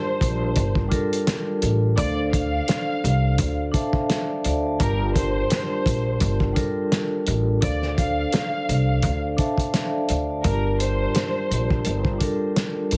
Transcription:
Already playing: G3 D4 F4 G4 A#4 C5 D5
0.21 A#1, kick, closed hi-hat
0.56 G1, kick, closed hi-hat
0.75 kick
0.88 G3 D4 F4 A4, kick, closed hi-hat
0.92 A#4
1.13 closed hi-hat
1.27 snare, closed hi-hat
1.62 A1, closed hi-hat
1.96 D2 D4 A4 C5 D5, kick, closed hi-hat
2.00 F5
2.32 F5, kick, closed hi-hat
2.68 snare, closed hi-hat
3.04 C2, closed hi-hat
3.38 D2, kick, closed hi-hat
3.72 D4 A4 C5 E5 A5, kick, closed hi-hat
3.76 F5
3.93 kick
4.10 F5, snare, closed hi-hat
4.27 A4 D5
4.44 D2 C5 D5 F5, closed hi-hat
4.66 D5 A5
4.79 G1 G3 D4 F4 G4 A#4, kick, closed hi-hat
4.83 A#4
5.16 C5, kick, closed hi-hat
5.50 snare, closed hi-hat
5.86 A#1, kick, closed hi-hat
6.20 G1, kick, closed hi-hat
6.40 kick
6.53 G3 D4 F4 A4, kick, closed hi-hat
6.57 A#4
6.92 snare, closed hi-hat
7.27 A1, closed hi-hat
7.61 D2 D4 A4 C5 D5, kick, closed hi-hat
7.65 F5
7.82 snare
7.98 F5, kick, closed hi-hat
8.33 snare, closed hi-hat
8.69 C2, closed hi-hat
9.03 D2, kick, closed hi-hat
9.36 D4 A4 C5 E5 A5, kick, closed hi-hat
9.41 F5
9.58 kick, closed hi-hat
9.74 snare, closed hi-hat
9.92 A4 D5
10.09 D2 C5 D5 F5, closed hi-hat
10.30 D5 A5
10.43 G1 G3 D4 F4 G4 A#4, kick, closed hi-hat
10.48 A#4
10.80 C5, closed hi-hat
11.15 snare, closed hi-hat
11.51 A#1, closed hi-hat
11.70 kick
11.85 G1, closed hi-hat
12.05 kick
12.17 G3 D4 F4 A4, kick, closed hi-hat
12.21 A#4
12.56 snare, closed hi-hat
12.91 A1, closed hi-hat

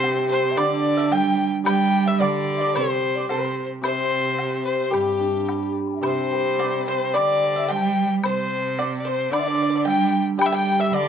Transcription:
Already playing: C3 G3 C5
0.03 C4, low woodblock
0.29 C5
0.51 E5
0.56 D3 D5, high woodblock
0.97 E5
1.05 A5
1.11 G3 G5, low woodblock
1.64 G3 G5, high woodblock
2.06 E5
2.19 D3 D5, low woodblock
2.57 D5 E5
2.61 D5
2.74 C3 C5, high woodblock
2.81 A4
2.89 C5
3.15 D5
3.29 C3 C5, low woodblock
3.82 C3 C5, high woodblock
4.38 low woodblock
4.64 C5
4.91 G2 G3 G4, high woodblock
5.19 D4
5.49 high woodblock, low woodblock
5.86 A5 C6
5.92 E5 G5
6.00 C3 C5 D5, high woodblock
6.06 C5
6.31 G3
6.38 A4
6.58 C4 D5, low woodblock
6.87 C5
7.14 D3 D5, high woodblock
7.56 E5
7.68 G3 G5, low woodblock
7.76 A5
7.82 G5
8.23 C3 C5, high woodblock
8.79 D5, low woodblock
9.00 D5
9.05 C5
9.30 D3 D5, high woodblock
9.39 D5 E5
9.47 D5
9.55 D5
9.62 D5
9.70 D5
9.76 D5
9.85 G3 G5, low woodblock
10.38 G3 G5, high woodblock
10.42 G5
10.46 E5
10.51 G5
10.80 E5
10.92 D3 D5, low woodblock

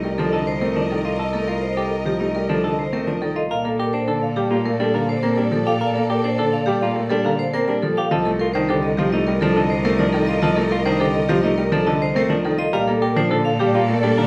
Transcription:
Already playing: C2 A#4 D#5
0.04 G3 A#4
0.18 F3 D4 A4
0.33 D3 A4 D#5
0.47 C5
0.61 A3 C4 A#4
0.76 F3 D4 D5
0.90 D#3 A4
1.05 F4 D#5
1.18 A4 D#5
1.33 A3 A4
1.48 F4 A#4
1.62 C5
1.77 G4 A4
1.91 D#5
2.05 F3 G4
2.20 A3 D#4 D#5
2.35 G3 A#4
2.49 F3 D4 A4
2.64 D3 A4 D#5
2.79 C5
2.93 A3 C4 A#4
3.07 F3 D4 D5
3.22 D#3 A4
3.36 F4 D#5
3.50 A#2 A4 A#4 D5 F5
3.64 A#3 A4
3.79 G4 A#4
3.93 D4 C5
4.08 D3 A4
4.22 F5
4.36 G3 G4
4.50 A#3 F4 F5
4.65 A3 A#4
4.80 G3 D4 A4
4.94 D3 A#4 F5
5.09 C5
5.23 A#3 C4 A#4
5.37 G3 D4 D5
5.52 F3 A4
5.67 G4 F5
5.81 A#4 F5
5.96 A#3 A4
6.10 G4 A#4
6.24 D4 C5
6.38 D3 A4
6.53 F5
6.66 G3 G4
6.81 A#3 F4 F5
6.96 A3 A#4
7.09 G3 D4 A4
7.25 D3 A#4 F5
7.39 C5
7.53 A#3 C4 A#4
7.68 G3 D4 D5
7.83 F3 A4
7.97 G4 F5
8.11 C2 F3 A4 A#4 D#5
8.25 A3 A4
8.39 F4 A#4
8.54 D#3 D4 C5
8.69 D3 G4 A4
8.83 D#5
8.97 F3 F4 G4
9.12 A3 D#4 D#5
9.27 G3 A#4
9.41 F3 D4 A4
9.56 D3 A4 D#5
9.70 C5
9.85 A3 C4 A#4
9.98 F3 D4 D5
10.13 D#3 A4
10.27 F4 D#5
10.42 F3 A4 D#5
10.56 A3 A4
10.71 F4 A#4
10.85 D#3 D4 C5
11.00 D3 G4 A4
11.15 D#5
11.29 F3 F4 G4
11.43 A3 D#4 D#5
11.58 G3 A#4
11.72 F3 D4 A4
11.87 D3 A4 D#5
12.02 C5
12.15 A3 C4 A#4
12.30 F3 D4 D5
12.45 D#3 A4
12.59 F4 D#5
12.73 A#2 G3 A4 A#4 D5 F5
12.87 A#3 A4
13.02 G4 A#4
13.16 F3 D4 C5
13.31 D3 A4
13.45 F5
13.59 G3 G4
13.74 A#3 F4 F5
13.88 A3 A#4
14.03 G3 D4 A4
14.17 D3 A#4 F5

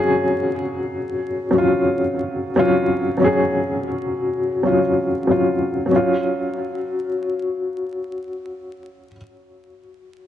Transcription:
Already playing: F#3 C#4 F4 G#4
1.51 F#3 C#4
1.58 F4
2.56 F#3 C#4 F4
3.17 F#3 C#4
3.24 G#4
4.63 F#3 C#4 F4
5.27 F#3 C#4 F4
5.86 F#3
5.91 C#4
5.96 F4

